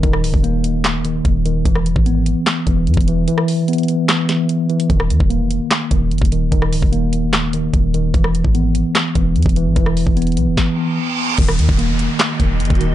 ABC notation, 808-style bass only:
X:1
M:4/4
L:1/16
Q:1/4=148
K:Ebphr
V:1 name="808-style bass" clef=bass
E,,,2 D,,, E,,,8- E,,, E,,,4 | =E,,,3 ^G,,,4 z3 E,,,2 =E,, E,,,3 | z16 | E,,,2 E,, E,,,2 F,,,2 z3 E,,,2 G,,, E,,,3 |
E,,,2 D,,, E,,,8- E,,, E,,,4 | =E,,,3 ^G,,,4 z3 E,,,2 =E,, E,,,2 G,,, | =E,,,3 E,,,3 =B,,, E,,, z8 | E,,,2 E,, E,,,2 F,,,2 z3 E,,,2 G,,, E,,,3 |]